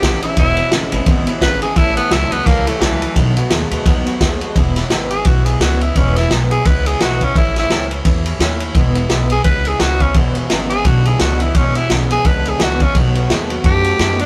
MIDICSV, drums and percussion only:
0, 0, Header, 1, 2, 480
1, 0, Start_track
1, 0, Key_signature, 4, "major"
1, 0, Tempo, 349040
1, 523, Time_signature, 4, 2, 24, 8
1, 19608, End_track
2, 0, Start_track
2, 0, Title_t, "Drums"
2, 35, Note_on_c, 9, 36, 85
2, 39, Note_on_c, 9, 38, 109
2, 39, Note_on_c, 9, 51, 90
2, 172, Note_off_c, 9, 36, 0
2, 177, Note_off_c, 9, 38, 0
2, 177, Note_off_c, 9, 51, 0
2, 309, Note_on_c, 9, 51, 62
2, 447, Note_off_c, 9, 51, 0
2, 504, Note_on_c, 9, 51, 90
2, 507, Note_on_c, 9, 36, 117
2, 642, Note_off_c, 9, 51, 0
2, 645, Note_off_c, 9, 36, 0
2, 779, Note_on_c, 9, 51, 60
2, 917, Note_off_c, 9, 51, 0
2, 984, Note_on_c, 9, 38, 110
2, 984, Note_on_c, 9, 51, 70
2, 1122, Note_off_c, 9, 38, 0
2, 1122, Note_off_c, 9, 51, 0
2, 1264, Note_on_c, 9, 51, 68
2, 1402, Note_off_c, 9, 51, 0
2, 1460, Note_on_c, 9, 51, 92
2, 1463, Note_on_c, 9, 36, 120
2, 1598, Note_off_c, 9, 51, 0
2, 1600, Note_off_c, 9, 36, 0
2, 1744, Note_on_c, 9, 51, 63
2, 1882, Note_off_c, 9, 51, 0
2, 1945, Note_on_c, 9, 36, 84
2, 1949, Note_on_c, 9, 38, 118
2, 1949, Note_on_c, 9, 51, 84
2, 2082, Note_off_c, 9, 36, 0
2, 2087, Note_off_c, 9, 38, 0
2, 2087, Note_off_c, 9, 51, 0
2, 2225, Note_on_c, 9, 51, 58
2, 2362, Note_off_c, 9, 51, 0
2, 2421, Note_on_c, 9, 51, 84
2, 2423, Note_on_c, 9, 36, 117
2, 2559, Note_off_c, 9, 51, 0
2, 2560, Note_off_c, 9, 36, 0
2, 2708, Note_on_c, 9, 51, 66
2, 2845, Note_off_c, 9, 51, 0
2, 2905, Note_on_c, 9, 38, 113
2, 2905, Note_on_c, 9, 51, 84
2, 3043, Note_off_c, 9, 38, 0
2, 3043, Note_off_c, 9, 51, 0
2, 3188, Note_on_c, 9, 51, 69
2, 3326, Note_off_c, 9, 51, 0
2, 3387, Note_on_c, 9, 36, 125
2, 3392, Note_on_c, 9, 38, 35
2, 3392, Note_on_c, 9, 51, 93
2, 3524, Note_off_c, 9, 36, 0
2, 3529, Note_off_c, 9, 38, 0
2, 3529, Note_off_c, 9, 51, 0
2, 3673, Note_on_c, 9, 51, 73
2, 3811, Note_off_c, 9, 51, 0
2, 3865, Note_on_c, 9, 36, 78
2, 3870, Note_on_c, 9, 38, 110
2, 3870, Note_on_c, 9, 51, 82
2, 4003, Note_off_c, 9, 36, 0
2, 4008, Note_off_c, 9, 38, 0
2, 4008, Note_off_c, 9, 51, 0
2, 4152, Note_on_c, 9, 51, 68
2, 4290, Note_off_c, 9, 51, 0
2, 4345, Note_on_c, 9, 36, 121
2, 4347, Note_on_c, 9, 51, 93
2, 4483, Note_off_c, 9, 36, 0
2, 4485, Note_off_c, 9, 51, 0
2, 4629, Note_on_c, 9, 51, 62
2, 4767, Note_off_c, 9, 51, 0
2, 4819, Note_on_c, 9, 38, 105
2, 4819, Note_on_c, 9, 51, 82
2, 4956, Note_off_c, 9, 38, 0
2, 4956, Note_off_c, 9, 51, 0
2, 5108, Note_on_c, 9, 51, 69
2, 5245, Note_off_c, 9, 51, 0
2, 5304, Note_on_c, 9, 36, 127
2, 5306, Note_on_c, 9, 38, 37
2, 5306, Note_on_c, 9, 51, 93
2, 5442, Note_off_c, 9, 36, 0
2, 5444, Note_off_c, 9, 38, 0
2, 5444, Note_off_c, 9, 51, 0
2, 5591, Note_on_c, 9, 51, 60
2, 5728, Note_off_c, 9, 51, 0
2, 5784, Note_on_c, 9, 36, 81
2, 5785, Note_on_c, 9, 38, 103
2, 5785, Note_on_c, 9, 51, 85
2, 5922, Note_off_c, 9, 36, 0
2, 5923, Note_off_c, 9, 38, 0
2, 5923, Note_off_c, 9, 51, 0
2, 6067, Note_on_c, 9, 51, 56
2, 6204, Note_off_c, 9, 51, 0
2, 6267, Note_on_c, 9, 36, 121
2, 6268, Note_on_c, 9, 51, 84
2, 6404, Note_off_c, 9, 36, 0
2, 6405, Note_off_c, 9, 51, 0
2, 6546, Note_on_c, 9, 38, 32
2, 6546, Note_on_c, 9, 51, 65
2, 6684, Note_off_c, 9, 38, 0
2, 6684, Note_off_c, 9, 51, 0
2, 6742, Note_on_c, 9, 38, 102
2, 6742, Note_on_c, 9, 51, 78
2, 6880, Note_off_c, 9, 38, 0
2, 6880, Note_off_c, 9, 51, 0
2, 7021, Note_on_c, 9, 51, 64
2, 7158, Note_off_c, 9, 51, 0
2, 7216, Note_on_c, 9, 51, 93
2, 7225, Note_on_c, 9, 36, 119
2, 7353, Note_off_c, 9, 51, 0
2, 7362, Note_off_c, 9, 36, 0
2, 7506, Note_on_c, 9, 51, 73
2, 7644, Note_off_c, 9, 51, 0
2, 7711, Note_on_c, 9, 38, 110
2, 7711, Note_on_c, 9, 51, 86
2, 7849, Note_off_c, 9, 38, 0
2, 7849, Note_off_c, 9, 51, 0
2, 7993, Note_on_c, 9, 51, 59
2, 8131, Note_off_c, 9, 51, 0
2, 8190, Note_on_c, 9, 36, 108
2, 8191, Note_on_c, 9, 51, 92
2, 8328, Note_off_c, 9, 36, 0
2, 8328, Note_off_c, 9, 51, 0
2, 8475, Note_on_c, 9, 38, 31
2, 8475, Note_on_c, 9, 51, 63
2, 8613, Note_off_c, 9, 38, 0
2, 8613, Note_off_c, 9, 51, 0
2, 8673, Note_on_c, 9, 38, 102
2, 8673, Note_on_c, 9, 51, 72
2, 8810, Note_off_c, 9, 38, 0
2, 8810, Note_off_c, 9, 51, 0
2, 8952, Note_on_c, 9, 51, 59
2, 9090, Note_off_c, 9, 51, 0
2, 9149, Note_on_c, 9, 51, 93
2, 9153, Note_on_c, 9, 36, 118
2, 9287, Note_off_c, 9, 51, 0
2, 9290, Note_off_c, 9, 36, 0
2, 9436, Note_on_c, 9, 51, 63
2, 9573, Note_off_c, 9, 51, 0
2, 9632, Note_on_c, 9, 38, 105
2, 9632, Note_on_c, 9, 51, 81
2, 9769, Note_off_c, 9, 38, 0
2, 9769, Note_off_c, 9, 51, 0
2, 9913, Note_on_c, 9, 36, 70
2, 9914, Note_on_c, 9, 51, 61
2, 10051, Note_off_c, 9, 36, 0
2, 10051, Note_off_c, 9, 51, 0
2, 10114, Note_on_c, 9, 36, 115
2, 10120, Note_on_c, 9, 51, 80
2, 10251, Note_off_c, 9, 36, 0
2, 10257, Note_off_c, 9, 51, 0
2, 10398, Note_on_c, 9, 38, 31
2, 10398, Note_on_c, 9, 51, 59
2, 10536, Note_off_c, 9, 38, 0
2, 10536, Note_off_c, 9, 51, 0
2, 10593, Note_on_c, 9, 38, 98
2, 10593, Note_on_c, 9, 51, 76
2, 10731, Note_off_c, 9, 38, 0
2, 10731, Note_off_c, 9, 51, 0
2, 10877, Note_on_c, 9, 51, 60
2, 11014, Note_off_c, 9, 51, 0
2, 11069, Note_on_c, 9, 51, 99
2, 11071, Note_on_c, 9, 36, 116
2, 11206, Note_off_c, 9, 51, 0
2, 11209, Note_off_c, 9, 36, 0
2, 11353, Note_on_c, 9, 51, 68
2, 11491, Note_off_c, 9, 51, 0
2, 11555, Note_on_c, 9, 38, 108
2, 11555, Note_on_c, 9, 51, 87
2, 11693, Note_off_c, 9, 38, 0
2, 11693, Note_off_c, 9, 51, 0
2, 11829, Note_on_c, 9, 51, 65
2, 11967, Note_off_c, 9, 51, 0
2, 12029, Note_on_c, 9, 36, 125
2, 12031, Note_on_c, 9, 51, 84
2, 12166, Note_off_c, 9, 36, 0
2, 12169, Note_off_c, 9, 51, 0
2, 12312, Note_on_c, 9, 51, 64
2, 12450, Note_off_c, 9, 51, 0
2, 12509, Note_on_c, 9, 38, 99
2, 12509, Note_on_c, 9, 51, 76
2, 12646, Note_off_c, 9, 38, 0
2, 12646, Note_off_c, 9, 51, 0
2, 12786, Note_on_c, 9, 51, 65
2, 12924, Note_off_c, 9, 51, 0
2, 12985, Note_on_c, 9, 51, 84
2, 12991, Note_on_c, 9, 36, 112
2, 13122, Note_off_c, 9, 51, 0
2, 13129, Note_off_c, 9, 36, 0
2, 13270, Note_on_c, 9, 51, 60
2, 13408, Note_off_c, 9, 51, 0
2, 13471, Note_on_c, 9, 38, 110
2, 13471, Note_on_c, 9, 51, 75
2, 13609, Note_off_c, 9, 38, 0
2, 13609, Note_off_c, 9, 51, 0
2, 13754, Note_on_c, 9, 51, 61
2, 13755, Note_on_c, 9, 36, 76
2, 13892, Note_off_c, 9, 51, 0
2, 13893, Note_off_c, 9, 36, 0
2, 13948, Note_on_c, 9, 51, 81
2, 13955, Note_on_c, 9, 36, 118
2, 14086, Note_off_c, 9, 51, 0
2, 14092, Note_off_c, 9, 36, 0
2, 14233, Note_on_c, 9, 51, 61
2, 14370, Note_off_c, 9, 51, 0
2, 14436, Note_on_c, 9, 38, 101
2, 14436, Note_on_c, 9, 51, 81
2, 14573, Note_off_c, 9, 38, 0
2, 14573, Note_off_c, 9, 51, 0
2, 14719, Note_on_c, 9, 51, 64
2, 14856, Note_off_c, 9, 51, 0
2, 14917, Note_on_c, 9, 51, 92
2, 14919, Note_on_c, 9, 36, 126
2, 15055, Note_off_c, 9, 51, 0
2, 15056, Note_off_c, 9, 36, 0
2, 15201, Note_on_c, 9, 51, 63
2, 15339, Note_off_c, 9, 51, 0
2, 15394, Note_on_c, 9, 38, 108
2, 15394, Note_on_c, 9, 51, 88
2, 15532, Note_off_c, 9, 38, 0
2, 15532, Note_off_c, 9, 51, 0
2, 15676, Note_on_c, 9, 51, 63
2, 15813, Note_off_c, 9, 51, 0
2, 15878, Note_on_c, 9, 51, 91
2, 15880, Note_on_c, 9, 36, 116
2, 16016, Note_off_c, 9, 51, 0
2, 16018, Note_off_c, 9, 36, 0
2, 16161, Note_on_c, 9, 51, 62
2, 16299, Note_off_c, 9, 51, 0
2, 16363, Note_on_c, 9, 38, 108
2, 16363, Note_on_c, 9, 51, 76
2, 16500, Note_off_c, 9, 38, 0
2, 16500, Note_off_c, 9, 51, 0
2, 16647, Note_on_c, 9, 51, 66
2, 16784, Note_off_c, 9, 51, 0
2, 16841, Note_on_c, 9, 51, 92
2, 16843, Note_on_c, 9, 36, 121
2, 16979, Note_off_c, 9, 51, 0
2, 16981, Note_off_c, 9, 36, 0
2, 17127, Note_on_c, 9, 51, 62
2, 17265, Note_off_c, 9, 51, 0
2, 17322, Note_on_c, 9, 38, 112
2, 17322, Note_on_c, 9, 51, 80
2, 17459, Note_off_c, 9, 38, 0
2, 17459, Note_off_c, 9, 51, 0
2, 17604, Note_on_c, 9, 36, 80
2, 17604, Note_on_c, 9, 51, 65
2, 17741, Note_off_c, 9, 51, 0
2, 17742, Note_off_c, 9, 36, 0
2, 17806, Note_on_c, 9, 51, 87
2, 17807, Note_on_c, 9, 36, 117
2, 17944, Note_off_c, 9, 36, 0
2, 17944, Note_off_c, 9, 51, 0
2, 18088, Note_on_c, 9, 51, 55
2, 18226, Note_off_c, 9, 51, 0
2, 18291, Note_on_c, 9, 38, 106
2, 18291, Note_on_c, 9, 51, 73
2, 18428, Note_off_c, 9, 38, 0
2, 18428, Note_off_c, 9, 51, 0
2, 18566, Note_on_c, 9, 51, 60
2, 18704, Note_off_c, 9, 51, 0
2, 18758, Note_on_c, 9, 51, 84
2, 18762, Note_on_c, 9, 36, 127
2, 18896, Note_off_c, 9, 51, 0
2, 18899, Note_off_c, 9, 36, 0
2, 19038, Note_on_c, 9, 51, 63
2, 19176, Note_off_c, 9, 51, 0
2, 19242, Note_on_c, 9, 38, 111
2, 19242, Note_on_c, 9, 51, 82
2, 19379, Note_off_c, 9, 38, 0
2, 19379, Note_off_c, 9, 51, 0
2, 19519, Note_on_c, 9, 51, 68
2, 19608, Note_off_c, 9, 51, 0
2, 19608, End_track
0, 0, End_of_file